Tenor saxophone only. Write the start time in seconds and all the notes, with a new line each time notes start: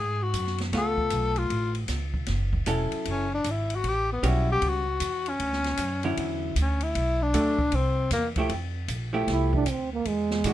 Already playing: G#4
0.22 F#4
0.77 A4
1.38 F4
3.10 C#4
3.34 D4
3.51 E4
3.76 F#4
3.88 G4
4.12 B3
4.29 E4
4.52 G4
4.68 F#4
5.29 C#4
6.62 C#4
6.83 E4
7.22 D4
7.75 C4
8.13 A#3